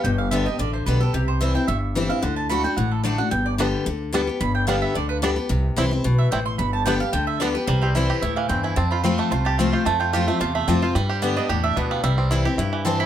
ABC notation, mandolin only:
X:1
M:4/4
L:1/8
Q:"Swing" 1/4=220
K:Gmix
V:1 name="Mandolin"
g f e _e d c B A | G c e g e z2 f | ^f a b g f A d f | g d z6 |
b g f e d B z2 | z4 z e g c' | b a g f g e d B | c G z2 e f g _a |
a b c' ^c' =c' a f g | a g f e f e d c | B c d _e d =e _e f | e z4 z a b |]